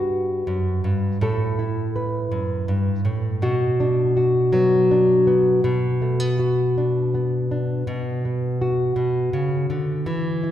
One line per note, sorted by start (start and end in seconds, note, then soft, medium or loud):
0.00 0.47 G2 medium
0.00 1.24 B3 medium
0.00 1.17 D4 soft
0.00 1.21 F#4 medium
0.47 0.84 F#2 medium
0.84 1.21 G2 medium
1.21 2.31 A2 medium
1.21 1.95 A4 medium
1.59 3.38 E4 soft
1.96 3.42 B4 medium
2.31 2.68 F#2 medium
2.68 3.04 G2 medium
3.05 3.42 A2 medium
3.42 5.63 B2 medium
3.42 4.16 F#4 medium
3.80 4.90 D4 medium
4.17 6.38 F#4 medium
4.53 5.60 F#3 medium
4.53 5.26 B3 medium
4.91 5.61 D4 medium
5.27 5.60 B3 medium
5.64 7.86 B2 medium
6.02 6.20 A3 soft
6.20 7.13 B3 soft
6.39 8.60 F#4 soft
6.78 7.50 D4 medium
7.14 8.25 B3 soft
7.51 7.83 D4 soft
7.87 8.95 B2 medium
8.25 10.51 B3 soft
8.61 10.07 F#4 soft
8.96 9.33 B2 medium
9.33 9.69 C#3 medium
9.70 10.06 D3 medium
10.06 10.51 E3 medium
10.43 10.51 E4 soft